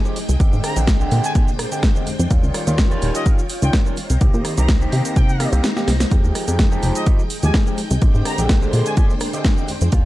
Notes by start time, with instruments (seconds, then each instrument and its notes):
Already playing: string machine G#3 D#4 G5
0.05 tine electric piano F3 G#3 D#4 G4, shaker
0.16 open hi-hat, shaker
0.29 analog synth bass C2, closed hi-hat, shaker
0.39 analog synth bass A#1, tine electric piano D3 G#3 C4 G4, string machine D4 C5, kick, closed hi-hat, shaker
0.53 analog synth bass G#2, shaker
0.64 trumpet section A#5, cross-stick, open hi-hat, shaker
0.76 analog synth bass A#1, tine electric piano D3 G#3 C4 G4, closed hi-hat, shaker
0.87 kick, snare, closed hi-hat, shaker
1.00 tine electric piano D3 G#3 C4 G4, shaker
1.11 analog synth bass A#2, open hi-hat, shaker
1.24 trumpet section G#5, closed hi-hat, shaker
1.35 analog synth bass A#2, tine electric piano D3 G#3 C4 G4, trumpet section G#5, kick, closed hi-hat, shaker
1.48 shaker
1.59 cross-stick, open hi-hat, shaker
1.71 tine electric piano D3 G#3 C4 G4, closed hi-hat, shaker
1.83 kick, snare, closed hi-hat, shaker
1.95 tine electric piano D3 G#3 C4 G4, shaker
2.07 analog synth bass F2, open hi-hat, shaker
2.19 analog synth bass F2, closed hi-hat, shaker
2.30 analog synth bass D#2, tine electric piano D#3 G3 C#4 F4, string machine F4 C#5, kick, closed hi-hat, shaker
2.43 analog synth bass C#2, shaker
2.54 cross-stick, open hi-hat, shaker
2.67 analog synth bass D#2, tine electric piano D#3 G3 C#4 F4, closed hi-hat, shaker
2.78 kick, snare, closed hi-hat, shaker
2.90 tine electric piano D#3 G3 C#4 F4, shaker
3.02 analog synth bass D#1, open hi-hat, shaker
3.14 trumpet section D#5, closed hi-hat, shaker
3.26 tine electric piano G3 C#4 F4, kick, closed hi-hat, shaker
3.39 shaker
3.49 open hi-hat, shaker
3.62 analog synth bass C#2, tine electric piano D#3 G3 C#4 F4, trumpet section G5, closed hi-hat, shaker
3.73 kick, snare, closed hi-hat, shaker
3.86 tine electric piano D#3 G3 C#4 F4, shaker
3.97 string machine D#4 C5 A#5, open hi-hat, shaker
4.10 analog synth bass C2, closed hi-hat, shaker
4.21 analog synth bass C2, tine electric piano D#3 A#3 C4 G4, kick, closed hi-hat, shaker
4.34 analog synth bass A#2, shaker
4.45 cross-stick, open hi-hat, shaker
4.57 analog synth bass C2, tine electric piano D#3 A#3 C4 G4, trumpet section A#5, closed hi-hat, shaker
4.68 kick, snare, closed hi-hat, shaker
4.81 tine electric piano D#3 A#3 C4 G4, shaker
4.92 analog synth bass C3, open hi-hat, shaker
5.05 closed hi-hat, shaker
5.16 analog synth bass C3, trumpet section G5, kick, closed hi-hat, shaker
5.29 shaker
5.40 tine electric piano D#3 A#3 C4 G4, cross-stick, open hi-hat, shaker
5.52 analog synth bass C2, tine electric piano D#3 A#3 C4 G4, closed hi-hat, shaker
5.64 snare, closed hi-hat, shaker
5.76 tine electric piano D#3 A#3 C4 G4, snare, shaker
5.88 analog synth bass C2, snare, open hi-hat, shaker
6.00 snare, closed hi-hat, shaker
6.11 analog synth bass F2, tine electric piano F3 G#3 D#4 G4, string machine G#3 G5, kick, closed hi-hat, shaker
6.24 analog synth bass D#2, shaker
6.35 cross-stick, open hi-hat, shaker
6.47 analog synth bass F2, tine electric piano F3 G#3 D#4 G4, closed hi-hat, shaker
6.59 kick, snare, closed hi-hat, shaker
6.71 tine electric piano F3 G#3 D#4 G4, shaker
6.83 analog synth bass F1, open hi-hat, shaker
6.95 trumpet section D#5, closed hi-hat, shaker
7.06 tine electric piano D#4 G4, kick, closed hi-hat, shaker
7.19 shaker
7.30 open hi-hat, shaker
7.43 analog synth bass D#2, tine electric piano F3 G#3 D#4 G4, trumpet section G#5, closed hi-hat, shaker
7.54 kick, snare, closed hi-hat, shaker
7.67 tine electric piano F3 G#3 D#4 G4, shaker
7.78 open hi-hat, shaker
7.90 analog synth bass C2, closed hi-hat, shaker
8.01 analog synth bass A#1, tine electric piano D3 G#3 C4 G4, string machine D4 C5, kick, closed hi-hat, shaker
8.15 analog synth bass G#2, shaker
8.25 trumpet section A#5, cross-stick, open hi-hat, shaker
8.38 analog synth bass A#1, tine electric piano D3 G#3 C4 G4, closed hi-hat, shaker
8.49 kick, snare, closed hi-hat, shaker
8.62 tine electric piano D3 G#3 C4 G4, shaker
8.73 analog synth bass A#2, open hi-hat, shaker
8.86 trumpet section G#5, closed hi-hat, shaker
8.97 analog synth bass A#2, tine electric piano C4 G4, trumpet section G#5, kick, closed hi-hat, shaker
9.10 shaker
9.20 cross-stick, open hi-hat, shaker
9.33 tine electric piano D3 G#3 C4 G4, closed hi-hat, shaker
9.45 kick, snare, closed hi-hat, shaker
9.57 tine electric piano D3 G#3 C4 G4, shaker
9.68 analog synth bass F2, open hi-hat, shaker
9.81 analog synth bass F2, closed hi-hat, shaker
9.92 analog synth bass D#2, tine electric piano D#3 G3 C#4 F4, string machine F4 C#5, kick, closed hi-hat, shaker